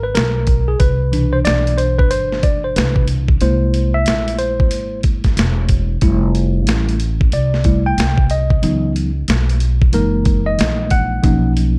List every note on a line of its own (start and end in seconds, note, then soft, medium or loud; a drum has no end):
0.00 0.12 G#1 medium
0.00 0.14 B4 medium
0.15 0.77 B1 medium
0.15 0.70 A#4 medium
0.15 snare loud
0.15 closed hi-hat medium
0.47 kick medium
0.47 closed hi-hat medium
0.68 0.80 G#4 medium
0.80 1.42 C2 medium
0.80 1.35 B4 medium
0.80 kick loud
0.80 closed hi-hat medium
1.12 3.37 B2 soft
1.12 3.37 E3 medium
1.12 3.37 D4 medium
1.12 closed hi-hat medium
1.33 1.38 C5 loud
1.45 2.11 B1 medium
1.45 1.79 D5 loud
1.45 snare loud
1.45 closed hi-hat medium
1.67 closed hi-hat medium
1.78 1.99 C5 medium
1.78 closed hi-hat medium
1.99 2.11 B4 medium
1.99 kick medium
2.11 2.73 G1 medium
2.11 2.44 C5 loud
2.11 closed hi-hat medium
2.32 snare soft
2.43 2.62 D5 medium
2.43 kick medium
2.43 closed hi-hat medium
2.64 2.75 C5 medium
2.76 3.38 C2 medium
2.76 3.06 B4 medium
2.76 snare loud
2.76 closed hi-hat medium
2.96 kick medium
3.08 closed hi-hat medium
3.28 kick loud
3.41 4.03 C2 loud
3.41 5.98 G#3 medium
3.41 5.98 A#3 soft
3.41 5.99 E4 medium
3.41 3.96 C5 medium
3.41 closed hi-hat medium
3.74 closed hi-hat medium
3.94 4.36 E5 loud
4.06 4.72 A#1 medium
4.06 snare loud
4.06 closed hi-hat loud
4.28 closed hi-hat medium
4.39 5.00 C5 medium
4.39 closed hi-hat medium
4.60 kick medium
4.71 5.34 G#1 medium
4.71 closed hi-hat medium
5.03 kick medium
5.03 closed hi-hat medium
5.24 kick medium
5.24 snare soft
5.24 closed hi-hat soft
5.37 5.99 E1 medium
5.37 snare loud
5.37 closed hi-hat medium
5.69 kick medium
5.69 closed hi-hat medium
6.01 6.67 F1 medium
6.01 6.96 G3 medium
6.01 6.96 A3 soft
6.01 6.96 E4 medium
6.01 kick loud
6.01 closed hi-hat medium
6.35 closed hi-hat medium
6.67 7.29 A1 medium
6.67 snare loud
6.67 closed hi-hat loud
6.89 closed hi-hat medium
7.00 closed hi-hat medium
7.21 kick loud
7.32 7.94 C2 medium
7.32 7.82 D5 medium
7.32 closed hi-hat medium
7.54 snare soft
7.64 7.94 G3 soft
7.64 7.94 A3 soft
7.64 7.95 E4 medium
7.64 kick medium
7.64 closed hi-hat medium
7.86 8.32 G5 loud
7.98 8.60 C2 medium
7.98 snare loud
7.98 closed hi-hat medium
8.18 kick loud
8.30 8.92 D#5 medium
8.30 closed hi-hat medium
8.50 kick loud
8.62 9.25 C#2 loud
8.62 9.09 E3 medium
8.62 9.09 F#3 soft
8.62 9.10 B3 soft
8.62 9.10 D#4 medium
8.62 closed hi-hat medium
8.96 closed hi-hat medium
9.28 9.90 B1 medium
9.28 snare loud
9.28 closed hi-hat loud
9.50 closed hi-hat medium
9.60 closed hi-hat medium
9.82 kick loud
9.93 10.55 F#1 medium
9.93 11.19 E3 medium
9.93 11.20 G#3 medium
9.93 11.20 A#3 medium
9.93 11.20 D#4 medium
9.93 10.48 A#4 medium
9.93 closed hi-hat medium
10.25 kick loud
10.25 closed hi-hat medium
10.46 10.92 D#5 loud
10.59 11.20 A#1 loud
10.59 snare loud
10.59 closed hi-hat medium
10.90 11.52 F#5 loud
10.90 kick loud
10.90 closed hi-hat medium
11.23 11.79 B1 loud
11.23 11.79 F3 medium
11.23 11.79 A#3 medium
11.23 11.79 C#4 medium
11.23 11.79 D#4 medium
11.23 kick loud
11.23 closed hi-hat medium
11.57 closed hi-hat medium